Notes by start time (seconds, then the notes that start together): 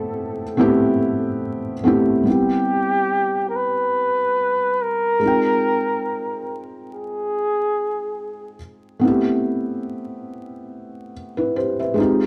Already playing: A3 B3 C4 E4 G4 A4
0.57 A3 B3 C4 E4 G4
1.84 A3 B3 C4 E4 G4
2.23 G3 B3
2.27 C4 E4 G4
2.31 G4
3.49 A#4
3.56 B4
4.82 A#4
5.20 G#3 C4 D#4
5.25 F4 G5
6.93 G#4
8.99 A3 B3 C4
9.05 E4 G4
11.37 E4 B4
11.56 G4 C5
11.79 B4 E5
11.94 G#3 C4
11.98 D#4 F4 G4